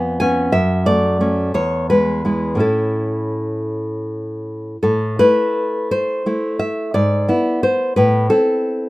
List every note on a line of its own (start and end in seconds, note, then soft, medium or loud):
0.00 0.51 F2 medium
0.00 0.20 B3 medium
0.00 0.18 G#5 loud
0.20 0.51 B3 medium
0.20 0.51 C#4 medium
0.20 0.52 G#5 medium
0.52 1.52 F#2 medium
0.52 0.86 E5 medium
0.86 1.19 A3 medium
0.86 1.52 D5 medium
1.20 1.52 A3 soft
1.20 1.52 C#4 medium
1.54 2.57 E2 medium
1.54 1.88 C#5 medium
1.90 2.23 G#3 soft
1.90 2.58 B4 medium
2.25 2.57 G#3 soft
2.25 2.57 E4 soft
2.55 4.75 A2 soft
2.55 4.76 C#4 soft
2.59 4.77 E4 soft
2.59 3.67 A4 medium
4.83 5.18 A2 medium
4.83 5.17 A4 medium
5.19 6.22 A3 soft
5.19 6.22 E4 medium
5.19 5.88 B4 medium
5.91 6.57 C5 medium
6.26 6.90 A3 soft
6.26 6.90 E4 medium
6.59 6.92 E5 medium
6.94 7.27 G#2 medium
6.94 7.60 D5 medium
7.28 7.92 B3 medium
7.28 7.63 E4 medium
7.63 7.95 C5 medium
7.96 8.30 A2 medium
7.96 8.29 B4 medium
8.30 8.89 C4 soft
8.30 8.89 E4 soft
8.30 8.89 A4 medium